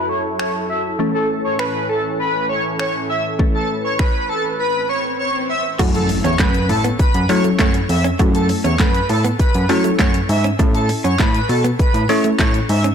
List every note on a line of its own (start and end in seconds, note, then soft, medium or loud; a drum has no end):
0.00 0.95 F#2 medium
0.00 0.95 E3 medium
0.00 0.95 F#3 medium
0.00 0.95 A3 medium
0.00 0.95 E4 medium
0.00 3.35 A4 medium
0.09 0.22 C#5 medium
0.39 0.52 C#5 medium
0.39 finger snap loud
0.69 0.82 E5 medium
0.99 5.75 A2 medium
0.99 3.35 E3 medium
0.99 5.75 E3 medium
0.99 3.35 A3 medium
0.99 3.35 C#4 medium
0.99 3.36 A4 medium
1.14 1.27 A4 medium
1.44 1.57 C#5 medium
1.59 1.85 B4 medium
1.59 finger snap loud
1.89 2.02 A4 medium
2.19 2.45 B4 medium
2.49 2.62 C#5 medium
2.79 2.92 C#5 medium
2.79 finger snap loud
3.09 3.22 E5 medium
3.39 5.75 E3 medium
3.39 5.75 A3 medium
3.39 5.75 C#4 medium
3.39 5.76 A4 medium
3.39 kick loud
3.39 swell medium
3.54 3.67 A4 medium
3.84 3.97 C#5 medium
3.99 4.25 B4 medium
3.99 finger snap loud
3.99 kick loud
4.29 4.42 A4 medium
4.59 4.85 B4 medium
4.89 5.02 C#5 medium
5.19 5.32 C#5 medium
5.49 5.62 E5 medium
5.79 6.09 F#2 loud
5.79 6.69 F#3 medium
5.79 6.69 A3 medium
5.79 6.69 C#4 medium
5.79 6.69 E4 medium
5.79 5.89 F#4 medium
5.79 6.69 A4 medium
5.79 kick loud
5.79 closed hi-hat medium
5.79 crash loud
5.79 impact medium
5.79 shaker medium
5.94 6.07 A4 medium
5.94 closed hi-hat medium
5.94 shaker medium
6.09 muted clean electric guitar stroke soft
6.09 open hi-hat medium
6.09 shaker medium
6.24 6.34 E2 loud
6.24 6.34 C#4 medium
6.24 6.37 C#5 medium
6.24 closed hi-hat medium
6.24 shaker medium
6.39 6.69 F#2 loud
6.39 6.49 A3 medium
6.39 6.65 B4 medium
6.39 kick loud
6.39 snare loud
6.39 clap loud
6.39 closed hi-hat medium
6.39 shaker medium
6.54 closed hi-hat medium
6.54 shaker medium
6.69 6.89 A2 loud
6.69 6.82 A4 medium
6.69 muted clean electric guitar stroke soft
6.69 open hi-hat medium
6.69 shaker medium
6.84 6.94 B3 medium
6.84 closed hi-hat medium
6.84 shaker medium
6.99 7.25 B4 loud
6.99 muted clean electric guitar stroke soft
6.99 kick loud
6.99 closed hi-hat medium
6.99 shaker medium
7.14 7.24 F#2 loud
7.14 closed hi-hat medium
7.14 shaker medium
7.29 7.96 F#3 medium
7.29 7.49 F#3 loud
7.29 7.96 A3 medium
7.29 7.39 C#4 medium
7.29 7.97 C#4 medium
7.29 7.97 E4 medium
7.29 7.97 A4 medium
7.29 7.42 C#5 medium
7.29 open hi-hat medium
7.29 shaker medium
7.44 7.54 A3 medium
7.44 closed hi-hat medium
7.44 shaker medium
7.59 7.79 F#2 loud
7.59 7.69 A3 medium
7.59 7.72 C#5 medium
7.59 kick loud
7.59 snare medium
7.59 clap loud
7.59 closed hi-hat medium
7.59 shaker medium
7.74 muted clean electric guitar stroke medium
7.74 closed hi-hat medium
7.74 shaker medium
7.89 8.09 F2 medium
7.89 8.02 E5 medium
7.89 open hi-hat medium
7.89 shaker medium
8.04 8.14 C#4 medium
8.04 closed hi-hat medium
8.04 shaker medium
8.19 8.49 F#2 loud
8.19 9.09 F#3 medium
8.19 9.09 A3 medium
8.19 9.09 C#4 medium
8.19 9.09 E4 medium
8.19 8.29 F#4 medium
8.19 9.09 A4 medium
8.19 kick loud
8.19 closed hi-hat medium
8.19 shaker medium
8.34 8.47 A4 medium
8.34 closed hi-hat medium
8.34 shaker medium
8.49 muted clean electric guitar stroke soft
8.49 open hi-hat medium
8.49 shaker medium
8.64 8.74 E2 loud
8.64 8.74 C#4 medium
8.64 8.77 C#5 medium
8.64 closed hi-hat medium
8.64 shaker medium
8.79 8.99 F#2 loud
8.79 8.89 A3 medium
8.79 9.05 B4 medium
8.79 kick loud
8.79 snare loud
8.79 clap loud
8.79 closed hi-hat medium
8.79 shaker medium
8.95 closed hi-hat medium
8.95 shaker medium
9.09 9.29 A2 medium
9.09 9.22 A4 medium
9.09 muted clean electric guitar stroke soft
9.09 open hi-hat medium
9.09 shaker medium
9.24 9.34 B3 medium
9.24 closed hi-hat medium
9.24 shaker medium
9.39 9.65 B4 medium
9.39 muted clean electric guitar stroke soft
9.39 kick loud
9.39 closed hi-hat medium
9.39 shaker medium
9.54 9.64 F#2 loud
9.54 closed hi-hat medium
9.54 shaker medium
9.69 10.36 F#3 medium
9.69 9.89 F#3 loud
9.69 10.37 A3 medium
9.69 10.37 C#4 medium
9.69 9.79 C#4 medium
9.69 10.37 E4 medium
9.69 10.37 A4 medium
9.69 9.82 C#5 medium
9.69 open hi-hat medium
9.69 shaker medium
9.84 9.94 A3 medium
9.84 closed hi-hat medium
9.84 shaker medium
9.99 10.19 F#2 loud
9.99 10.09 A3 medium
9.99 10.12 C#5 medium
9.99 kick loud
9.99 snare medium
9.99 clap loud
9.99 closed hi-hat medium
9.99 shaker medium
10.14 muted clean electric guitar stroke medium
10.14 closed hi-hat medium
10.14 shaker medium
10.29 10.49 G#2 loud
10.29 10.42 E5 medium
10.29 open hi-hat medium
10.29 shaker medium
10.44 10.54 C#4 medium
10.44 closed hi-hat medium
10.44 shaker medium
10.59 10.89 A2 loud
10.59 10.69 A3 medium
10.59 11.49 C#4 medium
10.59 11.49 E4 medium
10.59 11.49 A4 medium
10.59 kick loud
10.59 closed hi-hat medium
10.59 shaker medium
10.74 10.87 A4 medium
10.74 closed hi-hat medium
10.74 shaker medium
10.89 muted clean electric guitar stroke soft
10.89 open hi-hat medium
10.89 shaker medium
11.04 11.14 F#2 loud
11.04 11.14 C#4 medium
11.04 11.17 C#5 medium
11.04 closed hi-hat medium
11.04 shaker medium
11.19 11.39 A2 loud
11.19 11.29 A3 medium
11.19 11.45 B4 medium
11.19 kick loud
11.19 snare loud
11.19 clap loud
11.19 closed hi-hat medium
11.19 shaker medium
11.34 closed hi-hat medium
11.34 shaker medium
11.49 11.69 B2 medium
11.49 11.62 A4 medium
11.49 muted clean electric guitar stroke soft
11.49 open hi-hat medium
11.49 shaker medium
11.64 11.74 B3 medium
11.64 closed hi-hat medium
11.64 shaker medium
11.79 12.05 B4 loud
11.79 muted clean electric guitar stroke soft
11.79 kick loud
11.79 closed hi-hat medium
11.79 shaker medium
11.94 12.04 A2 loud
11.94 closed hi-hat medium
11.94 shaker medium
12.09 12.29 A3 loud
12.09 12.76 C#4 medium
12.09 12.19 C#4 medium
12.09 12.76 E4 medium
12.09 12.77 A4 medium
12.09 12.22 C#5 medium
12.09 open hi-hat medium
12.09 shaker medium
12.24 12.34 A3 medium
12.24 closed hi-hat medium
12.24 shaker medium
12.39 12.59 A2 medium
12.39 12.49 A3 medium
12.39 12.52 C#5 medium
12.39 kick loud
12.39 snare medium
12.39 clap loud
12.39 closed hi-hat medium
12.39 shaker medium
12.54 muted clean electric guitar stroke soft
12.54 closed hi-hat medium
12.54 shaker medium
12.69 12.89 G#2 loud
12.69 12.82 E5 medium
12.69 open hi-hat medium
12.69 shaker medium
12.84 12.94 C#4 medium
12.84 closed hi-hat medium
12.84 shaker medium